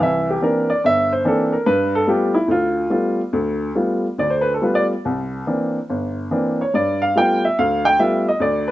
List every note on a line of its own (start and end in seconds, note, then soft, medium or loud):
0.00 0.36 C2 medium
0.00 0.36 E3 medium
0.00 0.28 E5 medium
0.30 0.42 G4 medium
0.42 0.71 E3 medium
0.42 0.71 A#3 soft
0.42 0.71 C4 soft
0.42 0.71 D4 medium
0.42 0.69 A#4 medium
0.70 0.83 D5 medium
0.84 1.20 G1 medium
0.84 1.11 E5 loud
1.13 1.25 C5 medium
1.25 1.54 E3 medium
1.25 1.54 A#3 medium
1.25 1.54 C4 soft
1.25 1.54 D4 medium
1.25 1.53 A4 medium
1.53 1.66 A#4 medium
1.66 2.02 G2 medium
1.66 1.93 B4 medium
1.95 2.08 A4 medium
2.07 2.36 G3 medium
2.07 2.36 A3 soft
2.07 2.36 B3 medium
2.07 2.37 F4 medium
2.07 2.35 G4 medium
2.34 2.48 E4 medium
2.48 2.85 D2 medium
2.48 2.90 F4 medium
2.90 3.20 G3 medium
2.90 3.20 A3 medium
2.90 3.20 B3 soft
2.90 3.20 F4 medium
3.33 3.70 D2 medium
3.75 4.05 G3 soft
3.75 4.05 A3 soft
3.75 4.06 B3 soft
3.75 4.06 F4 medium
4.18 4.56 D2 medium
4.18 4.56 D3 medium
4.18 4.33 D5 medium
4.30 4.46 C5 medium
4.41 4.51 B4 medium
4.54 4.61 A4 medium
4.62 4.92 G3 medium
4.62 4.92 A3 soft
4.62 4.93 B3 soft
4.62 4.93 F4 soft
4.62 4.77 B4 medium
4.75 4.84 D5 medium
5.05 5.42 C2 medium
5.47 5.77 E3 soft
5.47 5.77 A#3 soft
5.47 5.77 C4 soft
5.47 5.77 D4 medium
5.89 6.26 G1 medium
6.31 6.61 E3 medium
6.31 6.61 A#3 soft
6.31 6.61 C4 soft
6.31 6.61 D4 medium
6.61 6.74 C#5 medium
6.74 7.10 G2 medium
6.74 7.01 D5 medium
7.02 7.15 F5 medium
7.16 7.45 G3 medium
7.16 7.45 A3 soft
7.16 7.45 B3 soft
7.16 7.45 F4 medium
7.16 7.44 G5 medium
7.45 7.58 E5 medium
7.59 7.94 D2 medium
7.59 7.85 F5 medium
7.85 7.99 G5 loud
7.99 8.28 G3 medium
7.99 8.28 A3 soft
7.99 8.28 B3 soft
7.99 8.29 F4 medium
7.99 8.26 E5 medium
8.29 8.41 D#5 medium
8.40 8.71 D2 medium
8.40 8.68 D5 medium
8.68 8.71 B4 medium